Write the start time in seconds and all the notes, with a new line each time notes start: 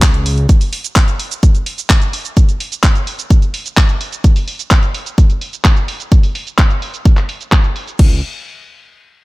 Already playing: C#2
0.02 kick, clap, closed hi-hat
0.14 closed hi-hat
0.26 open hi-hat
0.38 closed hi-hat
0.49 kick, closed hi-hat, shaker
0.61 open hi-hat, shaker
0.73 open hi-hat
0.84 closed hi-hat, shaker
0.96 kick, clap, closed hi-hat, shaker
1.08 closed hi-hat, shaker
1.19 open hi-hat
1.31 closed hi-hat, shaker
1.43 kick, closed hi-hat, shaker
1.55 closed hi-hat, shaker
1.66 open hi-hat
1.78 closed hi-hat, shaker
1.90 kick, clap, closed hi-hat, shaker
2.02 closed hi-hat, shaker
2.13 open hi-hat
2.25 closed hi-hat, shaker
2.37 kick, closed hi-hat, shaker
2.49 closed hi-hat, shaker
2.60 open hi-hat
2.72 closed hi-hat, shaker
2.83 kick, clap, closed hi-hat, shaker
2.95 closed hi-hat, shaker
3.07 open hi-hat
3.19 closed hi-hat, shaker
3.30 kick, closed hi-hat, shaker
3.42 closed hi-hat, shaker
3.54 open hi-hat
3.66 closed hi-hat, shaker
3.77 kick, clap, closed hi-hat, shaker
3.89 closed hi-hat, shaker
4.01 open hi-hat
4.12 closed hi-hat, shaker
4.24 kick, closed hi-hat, shaker
4.36 open hi-hat, shaker
4.48 open hi-hat
4.59 closed hi-hat, shaker
4.71 kick, clap, closed hi-hat, shaker
4.83 closed hi-hat, shaker
4.94 open hi-hat
5.06 closed hi-hat, shaker
5.18 kick, closed hi-hat, shaker
5.30 closed hi-hat, shaker
5.41 open hi-hat
5.53 closed hi-hat, shaker
5.65 kick, clap, closed hi-hat, shaker
5.77 closed hi-hat, shaker
5.88 open hi-hat
6.00 closed hi-hat, shaker
6.12 kick, closed hi-hat, shaker
6.23 open hi-hat, shaker
6.35 open hi-hat
6.47 closed hi-hat, shaker
6.58 kick, clap, closed hi-hat, shaker
6.70 closed hi-hat, shaker
6.82 open hi-hat
6.94 closed hi-hat, shaker
7.05 kick, closed hi-hat, shaker
7.17 clap, closed hi-hat, shaker
7.29 open hi-hat
7.41 closed hi-hat, shaker
7.52 kick, clap, closed hi-hat, shaker
7.64 closed hi-hat, shaker
7.76 open hi-hat
7.87 closed hi-hat, shaker
7.99 C#2, kick, crash